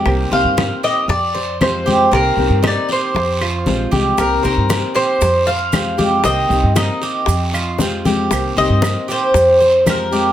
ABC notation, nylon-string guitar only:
X:1
M:4/4
L:1/8
Q:1/4=116
K:Cm
V:1 name="Nylon-string guitar"
[C,E,B,CG] [E,B,CG] [E,B,CG]2 z2 [F,A,CG] [F,A,CG] | [C,E,B,CG] [E,B,CG] [E,B,CG]2 z2 [F,A,CG] [F,A,CG] | [C,E,B,CG] [E,B,CG] [E,B,CG]2 z2 [F,A,CG] [F,A,CG] | [C,E,B,CG] [E,B,CG] [E,B,CG]2 z2 [F,A,CG] [F,A,CG] |
[C,E,B,CG] [E,B,CG] [E,B,CG]2 z2 [F,A,CG] [F,A,CG] |]